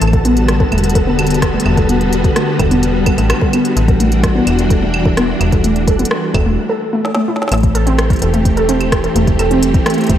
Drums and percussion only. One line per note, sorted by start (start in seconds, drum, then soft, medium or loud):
0.02 closed hi-hat medium
0.02 claves soft
0.07 claves soft
0.13 kick loud
0.13 closed hi-hat soft
0.25 closed hi-hat medium
0.37 closed hi-hat medium
0.48 cross-stick loud
0.48 closed hi-hat medium
0.60 kick loud
0.72 closed hi-hat soft
0.72 claves medium
0.78 closed hi-hat soft
0.84 closed hi-hat medium
0.90 closed hi-hat medium
0.95 kick loud
0.95 closed hi-hat medium
1.19 closed hi-hat medium
1.19 claves medium
1.27 closed hi-hat medium
1.30 closed hi-hat soft
1.34 closed hi-hat soft
1.42 kick loud
1.42 cross-stick loud
1.42 closed hi-hat medium
1.60 closed hi-hat medium
1.66 claves soft
1.77 kick loud
1.77 closed hi-hat soft
1.89 closed hi-hat medium
2.01 closed hi-hat soft
2.13 closed hi-hat medium
2.24 kick loud
2.24 closed hi-hat soft
2.36 cross-stick loud
2.36 closed hi-hat medium
2.59 kick loud
2.59 closed hi-hat medium
2.59 claves medium
2.71 closed hi-hat soft
2.83 closed hi-hat medium
3.06 kick loud
3.06 closed hi-hat medium
3.06 claves medium
3.18 closed hi-hat soft
3.18 claves soft
3.30 cross-stick loud
3.30 closed hi-hat medium
3.30 claves medium
3.41 kick loud
3.53 closed hi-hat medium
3.53 claves soft
3.65 closed hi-hat soft
3.77 closed hi-hat medium
3.88 kick loud
3.88 closed hi-hat soft
4.00 closed hi-hat medium
4.12 closed hi-hat soft
4.23 kick loud
4.23 cross-stick loud
4.23 closed hi-hat medium
4.47 closed hi-hat medium
4.47 claves medium
4.59 closed hi-hat soft
4.70 kick loud
4.70 closed hi-hat medium
4.94 claves medium
5.05 kick loud
5.17 cross-stick loud
5.17 closed hi-hat medium
5.41 closed hi-hat medium
5.41 claves medium
5.52 kick loud
5.52 closed hi-hat medium
5.64 closed hi-hat medium
5.76 closed hi-hat soft
5.88 kick loud
5.88 closed hi-hat medium
5.99 closed hi-hat medium
6.05 closed hi-hat medium
6.11 cross-stick loud
6.34 kick loud
6.34 closed hi-hat medium
6.34 claves medium
7.05 snare medium
7.15 snare medium
7.36 snare soft
7.42 snare medium
7.48 snare medium
7.48 closed hi-hat medium
7.48 claves soft
7.54 snare medium
7.54 closed hi-hat soft
7.58 closed hi-hat soft
7.60 kick loud
7.60 closed hi-hat soft
7.63 closed hi-hat soft
7.75 closed hi-hat medium
7.87 closed hi-hat soft
7.99 cross-stick loud
7.99 closed hi-hat medium
8.10 kick loud
8.10 closed hi-hat soft
8.13 closed hi-hat soft
8.16 closed hi-hat soft
8.19 closed hi-hat soft
8.22 closed hi-hat loud
8.34 closed hi-hat soft
8.45 kick loud
8.45 closed hi-hat medium
8.57 closed hi-hat soft
8.69 closed hi-hat loud
8.81 closed hi-hat soft
8.81 claves soft
8.92 kick loud
8.92 cross-stick loud
8.92 closed hi-hat medium
9.04 closed hi-hat soft
9.16 closed hi-hat loud
9.27 kick loud
9.27 closed hi-hat soft
9.39 closed hi-hat medium
9.39 claves soft
9.51 closed hi-hat soft
9.63 closed hi-hat loud
9.74 kick loud
9.74 closed hi-hat soft
9.86 cross-stick loud
9.86 closed hi-hat medium
9.90 closed hi-hat medium
9.94 closed hi-hat soft
9.98 closed hi-hat soft
10.01 closed hi-hat soft
10.04 closed hi-hat soft
10.07 kick loud
10.07 closed hi-hat soft
10.10 closed hi-hat loud